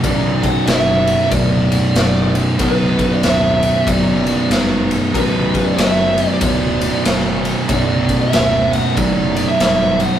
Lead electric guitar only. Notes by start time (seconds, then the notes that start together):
0.04 D5
0.42 F#5
0.66 E5
1.30 D5
2.62 B4
3.12 D5
3.25 E5
3.88 D5
5.15 B4
5.66 D5
5.78 E5
6.28 D5
6.42 D5
7.69 D5
8.22 E5
8.72 F#5
8.96 D5
9.48 E5
10.00 F#5